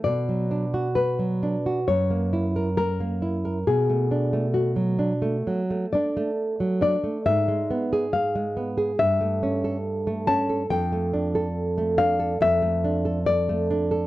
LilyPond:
<<
  \new Staff \with { instrumentName = "Nylon-string guitar" } { \time 4/4 \key b \dorian \tempo 4 = 69 d''4 b'4 cis''4 ais'4 | gis'4 fis'4. d''4 d''8 | \key d \dorian e''4 f''4 e''4. a''8 | g''4. f''8 e''4 d''8 r8 | }
  \new Staff \with { instrumentName = "Nylon-string guitar" } { \time 4/4 \key b \dorian b,16 fis16 d'16 fis'8 fis16 d'16 fis'16 fis,16 ais16 e'16 ais'8 ais16 e'16 ais'16 | b,16 a16 d'16 a8 fis16 d'16 a16 fis16 a16 d'16 a8 fis16 d'16 a16 | \key d \dorian gis,16 gis16 b16 gis'8 gis16 b16 gis'16 g,16 a16 cis'16 a'8 a16 cis'16 a'16 | f,16 a16 d'16 a'8 a16 d'16 a'16 f,16 a16 d'16 a'8 a16 d'16 a'16 | }
>>